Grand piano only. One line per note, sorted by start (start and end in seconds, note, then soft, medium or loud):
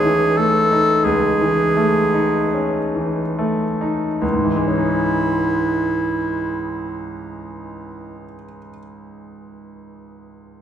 0.00 1.01 C#2 medium
0.00 0.04 E3 medium
0.00 0.37 A3 medium
0.00 0.24 C#4 medium
0.00 0.72 D#4 medium
0.04 0.58 E3 medium
0.37 0.91 A3 medium
0.72 1.27 D#4 medium
1.05 4.18 C#2 medium
1.41 1.99 E3 medium
1.77 2.37 A3 medium
2.14 2.78 D#4 medium
2.54 3.21 C#4 medium
2.95 3.64 E3 soft
3.39 4.06 A3 medium
3.81 4.22 D#4 medium
4.22 8.23 C#2 medium
4.33 8.34 G#2 soft
4.44 8.45 E3 soft
4.56 8.57 G#3 medium
4.67 8.68 C#4 soft
4.78 8.79 D#4 soft